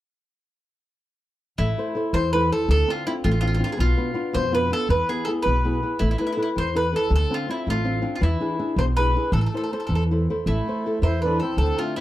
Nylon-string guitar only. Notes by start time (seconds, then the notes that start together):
1.59 A3
1.78 E4 A4 C5
1.95 E4 A4 C5
2.13 E3
2.34 E4 A4 C5
2.52 E4 A4 C5
2.69 D3
2.88 C4 D4 F4
3.06 C4 D4 F4
3.25 A3
3.42 C4 D4 F4
3.59 C4 D4 F4
3.77 B2
3.98 B3 D4 F4
4.14 B3 D4 F4
4.33 B2
4.52 B3 D4 F4
4.71 B3 D4 F4
4.89 E3
5.09 B3 E4 G#4
5.27 B3 E4 G#4
5.45 B2
5.65 B3 E4 G#4
5.83 B3 E4 G#4
6.00 A3
6.20 E4 A4 B4
6.37 E4 A4 B4
6.56 E3
6.75 E4 A4 B4
6.93 E4 A4 B4
7.11 D3
7.30 C4 D4 F4
7.49 C4 D4 F4
7.68 A3
7.85 C4 D4 F4
8.02 C4 D4 F4
8.21 E3
8.40 D4 E4 G#4
8.59 D4 E4 G#4
8.78 B2
8.98 D4 E4 G#4
9.15 D4 E4 G#4
9.33 A3
9.54 E4 A4 C5
9.72 E4 A4 C5
9.89 E3
10.11 E4 A4 C5
10.30 E4 A4 C5
10.48 A3
10.68 E4 A4 C5
10.86 E4 A4 C5
11.05 E3
11.25 E4 A4 C5
11.43 E4 A4 C5
11.61 D3
11.78 C4 D4 F4
11.97 C4 D4